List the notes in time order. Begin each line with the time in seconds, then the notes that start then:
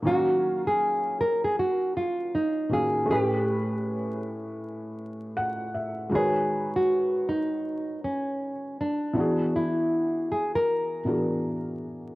0.02 D#3 A#3 C#4
0.07 F#3 F#4 F5
0.67 G#4
1.20 A#4
1.44 G#4
1.59 F#4
1.97 F4
2.35 D#4
2.69 D#3 A#3 C#4 F#4 F5
2.73 G#4
3.06 A2 A3 C#4
3.11 G4 B4
5.37 F#5
5.75 E5
6.10 D#3 G#3 F#4
6.14 G#4 A#4 B4 C#5
6.76 F#4
7.29 D#4
8.04 C#4
8.80 D4
9.13 E3 B3 D4
9.18 F#4 G#4
9.56 E4
10.32 G#4
10.55 A#4
11.05 E3 B3 D4 F#4 G#4
11.15 A#4